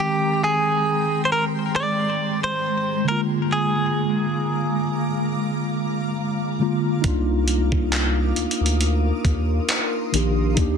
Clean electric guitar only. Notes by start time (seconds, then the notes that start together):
0.00 G4
0.44 G#4
1.25 C5
1.32 A#4
1.76 D5
2.44 C5
3.08 A#4
3.53 G#4